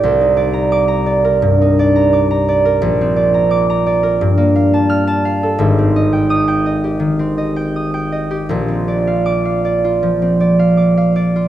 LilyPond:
\new Staff \with { instrumentName = "Harp" } { \time 4/4 \key c \minor \tempo 4 = 85 << { r4 d'''2.~ | d'''4 d'''2 f'''4 | r4 ees'''2. | r4 d'''2. | } \\ { <c, g' d'' g'' d'''>16 ees'16 d''16 bes''8 bes''16 d''16 bes'16 g,16 ees'16 d''16 bes''16 d'''16 bes''16 d''16 bes'16 | bes,,16 c'16 d''16 bes''8 bes''16 d''16 bes'16 g,16 bes16 f''16 a''8 a''16 f''16 a'16 | <aes,, aes,>16 c'16 ees''16 g''8 g''16 ees''16 g'16 ees16 c'16 ees''16 g''16 ees'''16 g''16 ees''16 g'16 | <bes,, bes,>16 c'16 d''16 f''8 f''16 d''16 f'16 f16 c'16 d''16 f''16 d'''16 f''16 d''16 f'16 | } >> }